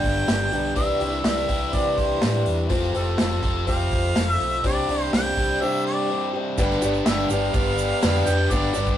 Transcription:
Already playing: steel-string acoustic guitar G2 D3 G3 B3 D4 G4, overdriven electric guitar G2 D3 G3 B3 D4 G4, harmonica G5
0.04 fingered electric bass G1, kick, open hi-hat
0.27 fingered electric bass G1, steel-string acoustic guitar G3 B3 D4 G4, snare, open hi-hat
0.52 fingered electric bass B1, steel-string acoustic guitar G3 B3 D4 G4, open hi-hat
0.76 fingered electric bass C2, steel-string acoustic guitar C3 E3 G3 D4 G4, overdriven electric guitar C4 E4, harmonica E5, kick, open hi-hat
1.00 fingered electric bass C2, steel-string acoustic guitar G3 D4 G4, open hi-hat
1.24 fingered electric bass C2, steel-string acoustic guitar E3 G3 D4 G4, harmonica E5, snare, open hi-hat
1.37 snare
1.49 fingered electric bass C2, overdriven electric guitar C3 G3 C4 E4 G4, kick, open hi-hat
1.72 steel-string acoustic guitar C3 E3 G3 D4 G4, fingered electric bass C3, harmonica D5, kick, open hi-hat
1.98 fingered electric bass C2, harmonica C5, kick, open hi-hat
2.20 fingered electric bass A2, steel-string acoustic guitar E3 G3 D4 G4, snare, open hi-hat
2.46 fingered electric bass E2, open hi-hat
2.69 fingered electric bass F1, steel-string acoustic guitar F3 A3 C4 G4, overdriven electric guitar F4 A4, kick, open hi-hat
2.94 fingered electric bass F1, steel-string acoustic guitar A3 C4 G4, harmonica A4, open hi-hat
3.18 fingered electric bass F1, steel-string acoustic guitar F3 A3 C4 G4, harmonica A4, snare, open hi-hat
3.31 snare
3.42 fingered electric bass F1, overdriven electric guitar F3 C4 F4 A4, kick, open hi-hat
3.66 fingered electric bass F1, steel-string acoustic guitar F3 A3 C4 G4, harmonica F5, kick, open hi-hat
3.91 fingered electric bass F1, kick, open hi-hat
4.15 fingered electric bass F1, steel-string acoustic guitar F3 A3 C4 G4, snare, open hi-hat
4.30 harmonica E5
4.40 fingered electric bass B1, open hi-hat
4.64 fingered electric bass C2, steel-string acoustic guitar C3 G3 C4 D4 G4, harmonica D5, kick, open hi-hat
4.89 fingered electric bass C2, steel-string acoustic guitar C4 D4 G4, open hi-hat
5.12 fingered electric bass C2, steel-string acoustic guitar G3 C4 D4 G4, harmonica G5, snare, open hi-hat
5.26 snare
5.36 fingered electric bass C2, overdriven electric guitar C3 G3 C4 D4 G4, kick, open hi-hat
5.60 steel-string acoustic guitar C3 G3 C4 D4 G4, harmonica E5
5.86 harmonica D5
6.10 steel-string acoustic guitar G3 C4 D4 G4
6.33 steel-string acoustic guitar C4 D4 G4
6.58 fingered electric bass G1, steel-string acoustic guitar G2 D3 G3 B3 D4 G4, harmonium G4 B4 D5, kick, crash, shaker
6.70 snare
6.82 fingered electric bass G1, steel-string acoustic guitar G3 B3 D4 G4, crash, shaker
6.94 shaker
7.06 fingered electric bass G1, steel-string acoustic guitar G2 D3 G3 B3 D4 G4, harmonica E5, snare, crash, shaker
7.29 fingered electric bass G1, steel-string acoustic guitar B3 D4 G4, harmonica F5, crash, shaker
7.33 steel-string acoustic guitar G3
7.54 fingered electric bass G1, steel-string acoustic guitar G3 B3 D4 G4, kick, crash, shaker
7.78 crash, shaker
8.02 fingered electric bass F2, steel-string acoustic guitar G2 D3 G3 B3 D4 G4, snare, crash, shaker
8.25 fingered electric bass F2, steel-string acoustic guitar G3 B3 D4 G4, harmonica G5, crash, shaker
8.50 fingered electric bass G1, steel-string acoustic guitar G2 D3 G3 B3 D4 G4, harmonica D5, kick, crash, shaker
8.73 fingered electric bass G1, steel-string acoustic guitar G3 B3 D4 G4, crash, shaker
8.86 kick, shaker

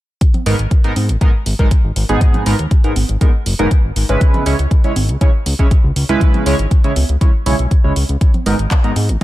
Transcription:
0.21 kick, closed hi-hat
0.34 closed hi-hat, high conga, low conga
0.46 analog synth bass G#1, analog polysynth G#2 G#3 B3 D#4 A#4, open hi-hat
0.59 analog synth bass G#1, closed hi-hat
0.71 kick, closed hi-hat
0.84 analog polysynth G#2 G#3 B3 D#4 A#4, closed hi-hat
0.96 analog synth bass G#2, open hi-hat, high conga
1.09 analog synth bass G#1, closed hi-hat
1.21 analog polysynth G#2 G#3 B3 D#4 A#4, kick, closed hi-hat
1.46 analog synth bass G#1, open hi-hat
1.59 analog synth bass G#1, analog polysynth G#2 G#3 B3 D#4 A#4, kick, closed hi-hat
1.71 kick, closed hi-hat
1.84 analog synth bass G#1
1.96 analog synth bass G#1, open hi-hat
2.09 analog synth bass G#1, analog polysynth G#2 G#3 B3 D#4 G#4, closed hi-hat
2.21 kick, closed hi-hat
2.34 closed hi-hat, high conga, low conga
2.46 analog synth bass G#1, analog polysynth G#2 G#3 B3 D#4 A#4, open hi-hat
2.59 analog synth bass D#2, closed hi-hat
2.71 kick, closed hi-hat
2.84 analog polysynth G#2 G#3 B3 D#4 A#4, closed hi-hat
2.96 analog synth bass G#1, open hi-hat, high conga
3.09 analog synth bass G#1, closed hi-hat
3.21 analog polysynth G#2 G#3 B3 D#4 A#4, kick, closed hi-hat
3.46 analog synth bass F#1, open hi-hat
3.59 analog synth bass F#1, analog polysynth G#2 G#3 B3 D#4 A#4, closed hi-hat
3.71 kick, closed hi-hat
3.84 analog synth bass G#1
3.96 analog synth bass G#1, open hi-hat
4.09 analog synth bass G#1, analog polysynth C#3 G#3 C#4 E4 B4, closed hi-hat
4.21 kick, closed hi-hat
4.34 closed hi-hat, high conga, low conga
4.46 analog synth bass C#2, analog polysynth C#3 G#3 C#4 E4 C#5, open hi-hat
4.59 analog synth bass C#2, closed hi-hat
4.71 kick, closed hi-hat
4.84 analog polysynth C#3 G#3 C#4 E4 C#5, closed hi-hat
4.96 analog synth bass G#1, open hi-hat, high conga
5.09 analog synth bass C#2, closed hi-hat
5.21 analog polysynth C#3 G#3 C#4 E4 C#5, kick, closed hi-hat
5.46 analog synth bass C#2, open hi-hat
5.59 analog synth bass C#2, analog polysynth C#3 G#3 C#4 E4 C#5, kick, closed hi-hat
5.71 kick, closed hi-hat
5.84 analog synth bass C#2
5.96 analog synth bass C#2, open hi-hat
6.09 analog synth bass C#2, analog polysynth C#3 G#3 C#4 E4 B4, closed hi-hat
6.21 kick, closed hi-hat
6.34 closed hi-hat, high conga, low conga
6.46 analog synth bass C#2, analog polysynth C#3 G#3 C#4 E4 C#5, open hi-hat
6.59 analog synth bass G#1, closed hi-hat
6.71 kick, closed hi-hat
6.84 analog polysynth C#3 G#3 C#4 E4 C#5, closed hi-hat
6.96 analog synth bass C#2, open hi-hat, high conga
7.09 analog synth bass C#2, closed hi-hat
7.21 analog polysynth C#3 G#3 C#4 E4 C#5, kick, closed hi-hat
7.46 analog synth bass B1, analog polysynth C#3 G#3 C#4 E4 C#5, open hi-hat
7.59 analog synth bass B1, closed hi-hat
7.71 kick, closed hi-hat
7.84 analog synth bass C#2, analog polysynth C#3 G#3 C#4 E4 C#5
7.96 analog synth bass C#2, open hi-hat
8.09 analog synth bass C#2, closed hi-hat
8.21 kick, closed hi-hat
8.34 closed hi-hat, high conga, low conga
8.46 analog synth bass G#1, analog polysynth G#2 G#3 B3 D#4 A#4, open hi-hat
8.59 analog synth bass G#1, closed hi-hat
8.71 kick, clap, closed hi-hat
8.84 analog polysynth G#2 G#3 B3 D#4 A#4, closed hi-hat
8.96 analog synth bass G#2, open hi-hat, high conga
9.09 analog synth bass G#1, closed hi-hat

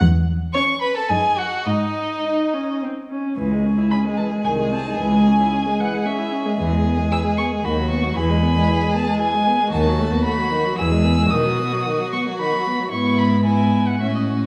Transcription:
0.01 cello E2
0.53 viola C#4, violin C#5 C#6
0.81 violin B4 B5
0.95 violin A4 A5
1.09 cello F#2, viola D#4, violin G#4 G#5
1.38 violin F#4 F#5
1.66 cello G#2, violin D#4 D#5
2.25 viola D#4
2.54 viola C#4
2.83 viola C4
3.10 viola C#4
3.37 cello C#2, viola E3, violin G#4
3.51 viola G#3
3.65 viola C#4
3.78 viola E4
3.91 viola C#4, violin B5
4.05 viola G#3
4.17 viola E3, violin A5
4.31 viola G#3
4.44 cello C2, viola D#3, violin G#5
4.59 viola G#3
4.72 viola C4, violin A5
4.85 viola D#4
4.99 cello C#2, viola E3, violin G#5
5.13 viola G#3
5.27 viola C#4
5.39 viola E4
5.53 viola C#4
5.66 viola G#3
5.79 viola E3, violin F#5
5.93 viola G#3
6.06 viola C#4, violin E5
6.18 viola E4
6.32 viola C#4
6.46 viola G#3
6.59 cello E2, viola E3, violin G#4
6.72 viola G#3
6.84 viola B3
6.98 viola G#3
7.12 viola E3, violin E6
7.24 viola G#3
7.37 viola B3, violin C#6
7.51 viola G#3
7.64 cello D#2, viola D#3, violin F#4 B5
7.77 viola F#3
7.90 viola B3, violin C#6
8.03 viola F#3
8.16 cello E2, viola E3, violin G#4 B5
8.30 viola G#3
8.42 viola B3
8.55 viola G#3
8.68 viola E3
8.82 viola G#3
8.94 viola B3, violin A5
9.07 viola G#3
9.19 viola E3, violin G#5
9.34 viola G#3
9.47 viola B3
9.60 viola G#3
9.71 cello D#2, viola D#3, violin F#4 A5
9.87 viola F#3
9.99 viola A3
10.12 viola B3
10.24 viola A3, violin B5
10.38 viola F#3
10.51 viola D#3
10.65 viola F#3
10.78 cello E2, viola E3, violin G#4 E6
10.91 viola G#3
11.04 viola B3
11.18 viola G#3
11.31 cello B2, viola D#3, violin F#4 D#6
11.45 viola F#3
11.59 viola B3
11.72 viola F#3
11.86 viola D#3
11.99 viola F#3
12.13 viola B3, violin C#6
12.27 viola F#3
12.39 viola D#3, violin B5
12.54 viola F#3
12.67 viola B3
12.80 viola F#3
12.91 cello G#2, viola B3, violin E4 C#6
13.18 violin B5
13.45 viola B3, violin E4 G#5
13.87 violin F#5
14.00 cello A2, viola C#4, violin F#4 E5
14.15 violin D#5

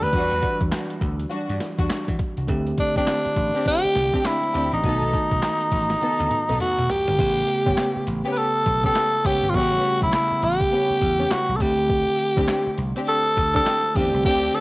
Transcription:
Already playing: tine electric piano D3 A3 C4 D4
0.01 slap bass D2, tenor saxophone B4, closed hi-hat
0.12 slap bass E2, tine electric piano E3 G3 D4 F#4, string section G3 D4 F#4, kick, closed hi-hat
0.31 slap bass E2, closed hi-hat
0.42 kick, closed hi-hat
0.60 slap bass E2, kick, closed hi-hat
0.72 snare, clap, closed hi-hat
0.90 closed hi-hat
1.01 slap bass D2, kick, closed hi-hat
1.19 closed hi-hat
1.30 string section G3 D4 F#4, closed hi-hat
1.49 slap bass G2, closed hi-hat
1.60 snare, closed hi-hat
1.78 slap bass E2, string section G3 D4 F#4, kick, closed hi-hat
1.89 snare, clap, closed hi-hat
2.08 slap bass E3, kick, closed hi-hat
2.19 kick, closed hi-hat
2.37 slap bass C2, closed hi-hat
2.47 slap bass D2, tine electric piano D3 A3 C4 G4, kick, closed hi-hat
2.67 closed hi-hat
2.78 tenor saxophone D4, kick, closed hi-hat
2.96 string section C4 D4 G4, tenor saxophone D4, muted slap bass stroke, kick, closed hi-hat
3.07 snare, clap, closed hi-hat
3.25 muted slap bass stroke, closed hi-hat
3.36 slap bass A1, kick, closed hi-hat
3.55 string section C4 D4 G4, closed hi-hat
3.66 tenor saxophone G4, kick, closed hi-hat
3.84 muted slap bass stroke, closed hi-hat
3.95 slap bass C2, snare, closed hi-hat
4.13 string section C4 D4 G4, kick, closed hi-hat
4.25 tenor saxophone E4, snare, clap, closed hi-hat
4.43 closed hi-hat
4.54 slap bass D2, string section C4 D4 G4, closed hi-hat
4.72 slap bass A1, tenor saxophone D#4, closed hi-hat
4.83 slap bass B1, tine electric piano D#3 A3 B3 F#4, string section B3 D#4 A4, kick, closed hi-hat
5.02 slap bass B1, closed hi-hat
5.13 kick, closed hi-hat
5.31 slap bass B1, kick, closed hi-hat
5.42 snare, clap, closed hi-hat
5.61 closed hi-hat
5.72 slap bass A1, kick, open hi-hat
5.90 snare, closed hi-hat
6.01 string section B3 D#4 A4, closed hi-hat, high tom
6.20 slap bass D2, closed hi-hat, high tom
6.31 closed hi-hat, mid tom
6.49 slap bass B1, string section B3 D#4 A4, closed hi-hat, mid tom
6.60 tenor saxophone F#4, closed hi-hat, mid tom
6.78 slap bass B2, closed hi-hat, mid tom
6.90 tenor saxophone G4, floor tom, open hi-hat
7.08 slap bass G1, closed hi-hat, floor tom
7.18 slap bass A1, tine electric piano C#3 A3 B3 G4, kick, closed hi-hat, crash
7.48 closed hi-hat
7.66 slap bass G1, string section B3 C#4 G4, kick, closed hi-hat
7.78 snare, clap, closed hi-hat
7.96 muted slap bass stroke
8.07 slap bass A1, closed hi-hat
8.25 string section B3 C#4 G4, closed hi-hat
8.32 tenor saxophone B4, closed hi-hat
8.38 tenor saxophone A4
8.66 slap bass B1, kick, closed hi-hat
8.84 string section B3 C#4 G4, tenor saxophone A4, kick, closed hi-hat
8.95 snare, clap, closed hi-hat
9.25 slap bass C#2, string section B3 C#4 G4, tenor saxophone G4, kick, open hi-hat
9.43 slap bass G1, closed hi-hat
9.50 tine electric piano C#3, tenor saxophone F4
9.54 slap bass A1, tine electric piano G3 A3 B3, string section B3 C#4 G4, tenor saxophone F#4, kick, closed hi-hat
9.84 closed hi-hat
10.02 slap bass B1, tenor saxophone E4, kick, closed hi-hat
10.13 tenor saxophone E4, snare, clap, closed hi-hat
10.31 muted slap bass stroke
10.42 slap bass A1, tenor saxophone G4, closed hi-hat
10.60 kick, closed hi-hat
10.71 string section B3 C#4 G4, closed hi-hat
10.90 muted slap bass stroke
11.01 slap bass E2, kick, closed hi-hat
11.19 string section B3 C#4 G4, closed hi-hat
11.31 tenor saxophone F#4, muted slap bass stroke, snare, clap, closed hi-hat
11.49 slap bass B1
11.56 tine electric piano D3, tenor saxophone A4
11.60 slap bass D2, tine electric piano A3 C4 G4, tenor saxophone G4, kick, open hi-hat
11.78 closed hi-hat
11.89 kick, closed hi-hat
12.19 closed hi-hat
12.37 slap bass D2, string section C4 D4 G4, kick, closed hi-hat
12.48 snare, clap, closed hi-hat
12.67 muted slap bass stroke
12.78 slap bass C2, closed hi-hat
12.96 string section C4 D4 G4, closed hi-hat
13.07 tenor saxophone A4, closed hi-hat
13.36 slap bass D2, kick, closed hi-hat
13.54 string section C4 D4 G4, tenor saxophone A4, kick, closed hi-hat
13.66 snare, clap, closed hi-hat
13.95 slap bass E2, tine electric piano D3 A3 C4 G4, string section C4 D4 G4, tenor saxophone G4, kick, open hi-hat
14.13 slap bass C2, closed hi-hat
14.24 slap bass D2, string section C4 D4 G4, tenor saxophone G4, kick, closed hi-hat
14.54 tenor saxophone A4, closed hi-hat

